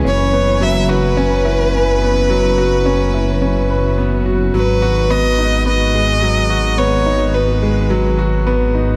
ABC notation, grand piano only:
X:1
M:4/4
L:1/8
Q:1/4=107
K:G#m
V:1 name="Grand piano"
C B, F, F C E C B, | F, F C E C B B, F | F, F B, D B, G, F, F | B, D B, G, F, F B, D |]